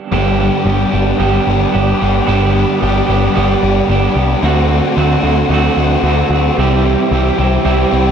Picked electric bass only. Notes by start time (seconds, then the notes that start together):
0.12 G1
0.65 G1
0.93 G1
1.20 G1
1.47 G1
1.75 G1
2.02 G1
2.28 G1
2.82 G1
3.08 G1
3.37 G1
3.63 G1
3.88 G1
4.15 C2
4.43 D2
4.97 D2
5.23 D2
5.49 D2
5.77 D2
6.03 D2
6.30 D2
6.58 C2
7.11 C2
7.39 C2
7.65 C2
7.93 C2